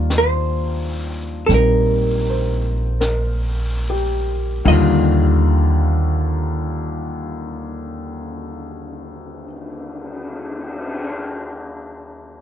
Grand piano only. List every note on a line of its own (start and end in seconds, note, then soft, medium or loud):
0.00 4.64 D#3 medium
0.00 1.48 G3 soft
0.00 4.66 A#3 soft
0.00 4.67 D4 soft
0.00 4.66 F4 medium
1.49 4.64 G3 soft
1.49 4.66 C4 soft
1.49 4.67 D#4 soft
2.30 3.40 C5 soft
3.00 4.32 A#4 soft
3.90 5.09 G4 soft
4.65 9.50 D#2 medium
4.65 9.52 D3 medium
4.65 9.51 D#3 medium
4.65 9.51 G3 medium
4.65 9.53 F4 medium